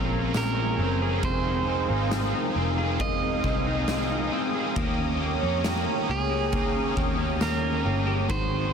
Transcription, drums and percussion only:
0, 0, Header, 1, 2, 480
1, 0, Start_track
1, 0, Tempo, 882353
1, 672, Time_signature, 4, 2, 24, 8
1, 4750, End_track
2, 0, Start_track
2, 0, Title_t, "Drums"
2, 186, Note_on_c, 9, 51, 55
2, 188, Note_on_c, 9, 38, 113
2, 190, Note_on_c, 9, 54, 65
2, 241, Note_off_c, 9, 51, 0
2, 242, Note_off_c, 9, 38, 0
2, 244, Note_off_c, 9, 54, 0
2, 669, Note_on_c, 9, 51, 62
2, 670, Note_on_c, 9, 36, 115
2, 723, Note_off_c, 9, 51, 0
2, 724, Note_off_c, 9, 36, 0
2, 1150, Note_on_c, 9, 38, 107
2, 1150, Note_on_c, 9, 51, 60
2, 1152, Note_on_c, 9, 54, 64
2, 1205, Note_off_c, 9, 38, 0
2, 1205, Note_off_c, 9, 51, 0
2, 1206, Note_off_c, 9, 54, 0
2, 1630, Note_on_c, 9, 51, 58
2, 1632, Note_on_c, 9, 36, 99
2, 1685, Note_off_c, 9, 51, 0
2, 1686, Note_off_c, 9, 36, 0
2, 1871, Note_on_c, 9, 36, 97
2, 1926, Note_off_c, 9, 36, 0
2, 2109, Note_on_c, 9, 51, 55
2, 2111, Note_on_c, 9, 38, 118
2, 2112, Note_on_c, 9, 54, 63
2, 2163, Note_off_c, 9, 51, 0
2, 2165, Note_off_c, 9, 38, 0
2, 2167, Note_off_c, 9, 54, 0
2, 2591, Note_on_c, 9, 36, 113
2, 2591, Note_on_c, 9, 51, 66
2, 2645, Note_off_c, 9, 36, 0
2, 2646, Note_off_c, 9, 51, 0
2, 3070, Note_on_c, 9, 38, 107
2, 3070, Note_on_c, 9, 51, 63
2, 3072, Note_on_c, 9, 54, 67
2, 3125, Note_off_c, 9, 38, 0
2, 3125, Note_off_c, 9, 51, 0
2, 3126, Note_off_c, 9, 54, 0
2, 3549, Note_on_c, 9, 51, 61
2, 3552, Note_on_c, 9, 36, 101
2, 3604, Note_off_c, 9, 51, 0
2, 3606, Note_off_c, 9, 36, 0
2, 3792, Note_on_c, 9, 36, 101
2, 3846, Note_off_c, 9, 36, 0
2, 4030, Note_on_c, 9, 51, 58
2, 4031, Note_on_c, 9, 38, 108
2, 4033, Note_on_c, 9, 54, 67
2, 4084, Note_off_c, 9, 51, 0
2, 4086, Note_off_c, 9, 38, 0
2, 4088, Note_off_c, 9, 54, 0
2, 4513, Note_on_c, 9, 36, 110
2, 4513, Note_on_c, 9, 51, 60
2, 4567, Note_off_c, 9, 51, 0
2, 4568, Note_off_c, 9, 36, 0
2, 4750, End_track
0, 0, End_of_file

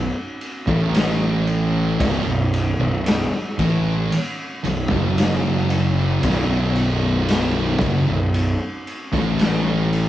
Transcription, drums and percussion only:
0, 0, Header, 1, 2, 480
1, 0, Start_track
1, 0, Tempo, 1058201
1, 906, Time_signature, 4, 2, 24, 8
1, 4575, End_track
2, 0, Start_track
2, 0, Title_t, "Drums"
2, 186, Note_on_c, 9, 51, 55
2, 232, Note_off_c, 9, 51, 0
2, 307, Note_on_c, 9, 36, 93
2, 353, Note_off_c, 9, 36, 0
2, 429, Note_on_c, 9, 51, 89
2, 438, Note_on_c, 9, 38, 116
2, 474, Note_off_c, 9, 51, 0
2, 483, Note_off_c, 9, 38, 0
2, 668, Note_on_c, 9, 51, 73
2, 713, Note_off_c, 9, 51, 0
2, 908, Note_on_c, 9, 36, 114
2, 908, Note_on_c, 9, 51, 99
2, 954, Note_off_c, 9, 36, 0
2, 954, Note_off_c, 9, 51, 0
2, 1150, Note_on_c, 9, 51, 73
2, 1196, Note_off_c, 9, 51, 0
2, 1388, Note_on_c, 9, 51, 102
2, 1398, Note_on_c, 9, 38, 124
2, 1434, Note_off_c, 9, 51, 0
2, 1443, Note_off_c, 9, 38, 0
2, 1628, Note_on_c, 9, 36, 91
2, 1628, Note_on_c, 9, 51, 64
2, 1673, Note_off_c, 9, 51, 0
2, 1674, Note_off_c, 9, 36, 0
2, 1870, Note_on_c, 9, 51, 93
2, 1915, Note_off_c, 9, 51, 0
2, 2108, Note_on_c, 9, 51, 62
2, 2154, Note_off_c, 9, 51, 0
2, 2229, Note_on_c, 9, 36, 101
2, 2274, Note_off_c, 9, 36, 0
2, 2350, Note_on_c, 9, 51, 96
2, 2359, Note_on_c, 9, 38, 116
2, 2395, Note_off_c, 9, 51, 0
2, 2404, Note_off_c, 9, 38, 0
2, 2586, Note_on_c, 9, 51, 76
2, 2631, Note_off_c, 9, 51, 0
2, 2826, Note_on_c, 9, 51, 97
2, 2827, Note_on_c, 9, 36, 114
2, 2871, Note_off_c, 9, 51, 0
2, 2872, Note_off_c, 9, 36, 0
2, 3064, Note_on_c, 9, 51, 69
2, 3109, Note_off_c, 9, 51, 0
2, 3304, Note_on_c, 9, 51, 91
2, 3314, Note_on_c, 9, 38, 116
2, 3350, Note_off_c, 9, 51, 0
2, 3359, Note_off_c, 9, 38, 0
2, 3543, Note_on_c, 9, 51, 62
2, 3544, Note_on_c, 9, 36, 105
2, 3588, Note_off_c, 9, 51, 0
2, 3589, Note_off_c, 9, 36, 0
2, 3783, Note_on_c, 9, 51, 79
2, 3829, Note_off_c, 9, 51, 0
2, 4024, Note_on_c, 9, 51, 56
2, 4069, Note_off_c, 9, 51, 0
2, 4142, Note_on_c, 9, 36, 99
2, 4152, Note_on_c, 9, 38, 28
2, 4188, Note_off_c, 9, 36, 0
2, 4197, Note_off_c, 9, 38, 0
2, 4260, Note_on_c, 9, 51, 89
2, 4269, Note_on_c, 9, 38, 113
2, 4305, Note_off_c, 9, 51, 0
2, 4315, Note_off_c, 9, 38, 0
2, 4504, Note_on_c, 9, 51, 67
2, 4549, Note_off_c, 9, 51, 0
2, 4575, End_track
0, 0, End_of_file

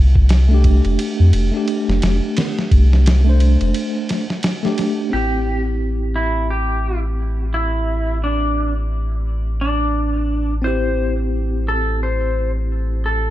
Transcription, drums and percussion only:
0, 0, Header, 1, 2, 480
1, 0, Start_track
1, 0, Key_signature, 0, "minor"
1, 0, Tempo, 689655
1, 1645, Time_signature, 4, 2, 24, 8
1, 9259, End_track
2, 0, Start_track
2, 0, Title_t, "Drums"
2, 108, Note_on_c, 9, 36, 93
2, 177, Note_off_c, 9, 36, 0
2, 203, Note_on_c, 9, 51, 84
2, 212, Note_on_c, 9, 38, 106
2, 273, Note_off_c, 9, 51, 0
2, 282, Note_off_c, 9, 38, 0
2, 446, Note_on_c, 9, 51, 63
2, 447, Note_on_c, 9, 36, 83
2, 516, Note_off_c, 9, 36, 0
2, 516, Note_off_c, 9, 51, 0
2, 589, Note_on_c, 9, 51, 42
2, 659, Note_off_c, 9, 51, 0
2, 688, Note_on_c, 9, 51, 88
2, 758, Note_off_c, 9, 51, 0
2, 926, Note_on_c, 9, 51, 80
2, 996, Note_off_c, 9, 51, 0
2, 1166, Note_on_c, 9, 51, 59
2, 1236, Note_off_c, 9, 51, 0
2, 1319, Note_on_c, 9, 38, 45
2, 1389, Note_off_c, 9, 38, 0
2, 1407, Note_on_c, 9, 51, 81
2, 1416, Note_on_c, 9, 38, 109
2, 1477, Note_off_c, 9, 51, 0
2, 1486, Note_off_c, 9, 38, 0
2, 1647, Note_on_c, 9, 51, 80
2, 1656, Note_on_c, 9, 38, 102
2, 1717, Note_off_c, 9, 51, 0
2, 1726, Note_off_c, 9, 38, 0
2, 1800, Note_on_c, 9, 38, 47
2, 1869, Note_off_c, 9, 38, 0
2, 1889, Note_on_c, 9, 36, 92
2, 1890, Note_on_c, 9, 51, 64
2, 1959, Note_off_c, 9, 36, 0
2, 1959, Note_off_c, 9, 51, 0
2, 2041, Note_on_c, 9, 38, 44
2, 2111, Note_off_c, 9, 38, 0
2, 2131, Note_on_c, 9, 51, 79
2, 2140, Note_on_c, 9, 38, 114
2, 2200, Note_off_c, 9, 51, 0
2, 2209, Note_off_c, 9, 38, 0
2, 2368, Note_on_c, 9, 51, 68
2, 2438, Note_off_c, 9, 51, 0
2, 2511, Note_on_c, 9, 51, 40
2, 2581, Note_off_c, 9, 51, 0
2, 2606, Note_on_c, 9, 51, 83
2, 2676, Note_off_c, 9, 51, 0
2, 2848, Note_on_c, 9, 51, 68
2, 2857, Note_on_c, 9, 38, 51
2, 2918, Note_off_c, 9, 51, 0
2, 2927, Note_off_c, 9, 38, 0
2, 2994, Note_on_c, 9, 38, 44
2, 3064, Note_off_c, 9, 38, 0
2, 3082, Note_on_c, 9, 51, 87
2, 3091, Note_on_c, 9, 38, 108
2, 3152, Note_off_c, 9, 51, 0
2, 3161, Note_off_c, 9, 38, 0
2, 3236, Note_on_c, 9, 38, 39
2, 3306, Note_off_c, 9, 38, 0
2, 3325, Note_on_c, 9, 51, 70
2, 3334, Note_on_c, 9, 38, 44
2, 3395, Note_off_c, 9, 51, 0
2, 3404, Note_off_c, 9, 38, 0
2, 9259, End_track
0, 0, End_of_file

